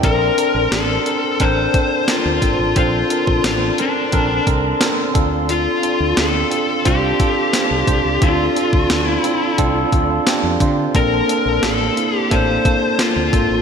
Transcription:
Already playing: tine electric piano D5 G5
0.03 fretless electric bass A#1, tine electric piano C4 D4 A4 A#4, lead electric guitar A#4, flute section C5 D5 A5 C6, kick, closed hi-hat
0.37 tine electric piano C4 D4 A4 A#4, closed hi-hat
0.55 fretless electric bass A#1
0.72 fretless electric bass A1, tine electric piano C4 D4 A4 A#4, lead electric guitar A4, snare, closed hi-hat
1.06 tine electric piano C4 D4 A4 A#4, closed hi-hat
1.40 fretless electric bass A1, tine electric piano C4 D4 A4 A#4, lead electric guitar C5, kick, closed hi-hat
1.74 tine electric piano C4 D4 A4 C5, kick, closed hi-hat
2.08 tine electric piano C4 D4 A4 A#4, lead electric guitar F4, snare, closed hi-hat
2.25 fretless electric bass D2
2.42 fretless electric bass G#1, tine electric piano C4 D4 A4 C5, kick, closed hi-hat
2.59 fretless electric bass A1
2.76 fretless electric bass A#1, tine electric piano C4 D4 A4 C5, lead electric guitar F4, kick, closed hi-hat
3.10 tine electric piano C4 D4 A4 A#4, closed hi-hat
3.27 fretless electric bass A#1, kick
3.44 fretless electric bass A1, tine electric piano C4 D4 A4 C5, lead electric guitar F4, snare, closed hi-hat
3.78 tine electric piano C4 D4 A4 A#4, lead electric guitar D4, closed hi-hat
4.12 fretless electric bass A#1, tine electric piano C4 D4 A4 A#4, kick, closed hi-hat
4.46 fretless electric bass C2, tine electric piano C4 D4 A4 A#4, kick, closed hi-hat
4.80 tine electric piano C4 D4 A4 A#4, snare, closed hi-hat
5.13 fretless electric bass D2, tine electric piano C4 D4 F4 A4, flute section A4 F5, kick, closed hi-hat
5.49 lead electric guitar F4, closed hi-hat
5.82 tine electric piano C4 D4 F4 A4, closed hi-hat
6.00 fretless electric bass D2
6.16 fretless electric bass D2, tine electric piano C4 D4 F4 A4, lead electric guitar A4, snare, closed hi-hat
6.51 tine electric piano C4 D4 F4 A4, closed hi-hat
6.84 fretless electric bass C2, tine electric piano C4 D4 F4 C5, lead electric guitar G4, kick, closed hi-hat
7.19 tine electric piano C4 D4 F4 A4, kick, closed hi-hat
7.53 tine electric piano C4 D4 F4 C5, snare, closed hi-hat
7.71 fretless electric bass C2
7.86 fretless electric bass C2, tine electric piano C4 D4 F4 C5, kick, closed hi-hat
8.05 fretless electric bass C#2
8.21 fretless electric bass D2, tine electric piano C4 D4 F4 A4, lead electric guitar F4, kick, closed hi-hat
8.56 tine electric piano C4 D4 F4 A4, closed hi-hat
8.73 fretless electric bass D2, kick
8.90 fretless electric bass D2, tine electric piano C4 D4 F4 A4, snare, closed hi-hat
9.09 lead electric guitar E4
9.24 tine electric piano C4 D4 F4 A4, closed hi-hat
9.58 fretless electric bass C2, tine electric piano C4 D4 F4 A4, kick, closed hi-hat
9.92 fretless electric bass D2, tine electric piano C4 D4 F4 A4, kick, closed hi-hat
10.26 tine electric piano C4 D4 F4 G4 A5, muted fretless electric bass stroke, snare, closed hi-hat
10.43 fretless electric bass F2
10.60 fretless electric bass D3, tine electric piano C4 D4 F4 C5 F5, kick, closed hi-hat
10.94 fretless electric bass A#1, tine electric piano A#3 C4 D4 A4, lead electric guitar A#4, flute section C5 A5, kick, closed hi-hat
11.28 tine electric piano A#3 C4 D4 A4, closed hi-hat
11.46 fretless electric bass A#1
11.62 fretless electric bass A1, tine electric piano A#3 C4 D4 A4, lead electric guitar A4, snare, closed hi-hat
11.96 tine electric piano A#3 C4 D4 E4, closed hi-hat
12.16 lead electric guitar G4
12.30 fretless electric bass A1, tine electric piano A#3 C4 D4 A4, lead electric guitar C5, kick, closed hi-hat
12.64 tine electric piano A#3 C4 D4 A4, kick, closed hi-hat
12.98 tine electric piano A#3 C4 D4 F4, lead electric guitar F4, snare, closed hi-hat
13.16 fretless electric bass D2
13.32 fretless electric bass G#1, tine electric piano A#3 C4 D4 A4, kick, closed hi-hat
13.51 fretless electric bass A1

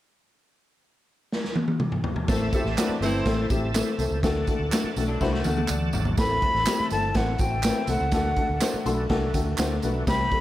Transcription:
1.32 snare
1.44 snare
1.56 high tom
1.68 high tom
1.80 mid tom
1.92 mid tom
2.04 floor tom
2.16 floor tom
2.28 fingered electric bass A1, upright piano A3 C4 E4 A4, tonewheel organ A4 C5 E5 A5, kick, snare, crash, tambourine
2.52 upright piano A3 C4 E4 G4, horn section C4 E4 A4 E5, kick, closed hi-hat, tambourine
2.64 fingered electric bass A1, snare
2.77 upright piano A3 C4 E4 F#4, horn section D4 B4 D5, snare, clap, closed hi-hat, tambourine
2.89 muted fingered electric bass stroke
3.00 fingered electric bass G1, upright piano A3 C4 E4 B4, horn section A3 C4 E4 C5, closed hi-hat, tambourine
3.26 fingered electric bass A1, upright piano A3 C4 E4 A4, kick, snare, closed hi-hat, tambourine
3.50 fingered electric bass A1, upright piano A3 C4 E4 G4, kick, closed hi-hat, tambourine
3.74 upright piano A3 C4 E4 A4, snare, clap, closed hi-hat, tambourine
3.98 fingered electric bass C2, upright piano A3 C4 E4 A4, closed hi-hat, tambourine
4.11 fingered electric bass C#2
4.23 fingered electric bass D2, upright piano A3 D4 F#4 A4, tonewheel organ A4 D5 F#5 A5, kick, snare, closed hi-hat, tambourine
4.47 upright piano A3 D4 F#4 A4, kick, closed hi-hat, tambourine
4.59 fingered electric bass D2
4.72 upright piano A3 D4 F#4 A4, snare, clap, closed hi-hat, tambourine
4.84 muted fingered electric bass stroke
4.96 fingered electric bass B1, upright piano A3 D4 F#4 A4, closed hi-hat, tambourine
5.08 clean electric guitar F#3 D4
5.21 fingered electric bass C2, upright piano A3 D4 F#4 C5, clean electric guitar E4, kick, snare, tambourine
5.33 clean electric guitar A3 F#4, snare
5.44 fingered electric bass D2, upright piano A3 D4 F#4 A4, high tom, tambourine
5.58 high tom
5.68 fingered electric bass D2, upright piano D5, clap, tambourine
5.93 fingered electric bass G#1, upright piano F#5, floor tom, tambourine
6.05 floor tom
6.17 tonewheel organ A3 C4 E4 A4, upright piano A3 C4 E4 A4, flute B5, kick, snare, closed hi-hat, tambourine
6.42 upright piano A3 C4 E4 A4, kick, closed hi-hat
6.55 fingered electric bass A1, snare
6.66 upright piano A3 C4 E4 G4, snare, clap, closed hi-hat, tambourine
6.80 muted fingered electric bass stroke
6.90 fingered electric bass G1, upright piano A3 C4 E4 A4, flute A5, closed hi-hat, tambourine
7.14 fingered electric bass A1, upright piano A3 C4 E4 C5, flute F#5, kick, snare, closed hi-hat, tambourine
7.38 fingered electric bass A1, upright piano A3 C4 E4 F#4, flute G5, kick, closed hi-hat, tambourine
7.63 upright piano A3 C4 E4 B4, snare, clap, closed hi-hat, tambourine
7.87 fingered electric bass C2, upright piano A3 C4 E4 A4, flute F#5, closed hi-hat, tambourine
8.01 fingered electric bass C#2
8.11 fingered electric bass D2, tonewheel organ A3 D4 F#4, upright piano A3 D4 F#4 A4, kick, snare, closed hi-hat, tambourine
8.36 upright piano A3 D4 F#4 A4, kick, closed hi-hat
8.49 fingered electric bass D2
8.61 upright piano A3 D4 F#4 C5, snare, clap, closed hi-hat, tambourine
8.74 muted fingered electric bass stroke
8.85 fingered electric bass B1, upright piano A3 D4 F#4 A4 C6, closed hi-hat, tambourine
8.94 upright piano B5
9.09 fingered electric bass C2, upright piano A3 D4 F#4 A4 A5, kick, snare, closed hi-hat
9.34 fingered electric bass D2, upright piano A3 D4 F#4 A4 G5, kick, closed hi-hat, tambourine
9.58 fingered electric bass D2, upright piano A3 D4 F#4 C5 F#5, snare, clap, closed hi-hat, tambourine
9.82 fingered electric bass B1, upright piano A3 D4 F#4 B4, closed hi-hat, tambourine
9.91 upright piano E5
10.07 fingered electric bass C2, upright piano G3 C4 E4 G4, tonewheel organ G3 C4 E4 G4, flute B5, kick, snare, closed hi-hat, tambourine
10.31 upright piano G3 C4 E4 A4, kick, closed hi-hat

